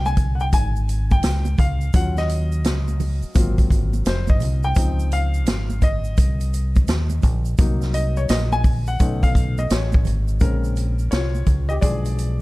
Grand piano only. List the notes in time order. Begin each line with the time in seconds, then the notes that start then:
Already playing: G3 G#3 D#4
0.06 G#5
0.35 F#5
0.41 G5
0.54 G#5
1.12 G5
1.60 F5
1.94 F#3 C#4 F4 F#5
2.18 D#5
3.35 F#3 A#3 C4 F4
4.07 C5
4.29 D#5
4.64 G5
4.76 F3 C4 D#4
5.13 F5
5.83 D#5
7.58 F#3 A#3 D#4
7.94 D#5
8.17 C#5
8.30 D#5
8.53 G#5
8.88 F#5
9.00 A3 C#4 D#4
9.23 F5
9.59 D#5
9.71 C#5
10.41 C#3 G#3 C4 C#4 A#4
11.11 F4 C#5
11.69 G4 D#5
11.81 F3 G#3 D4 G#4 D5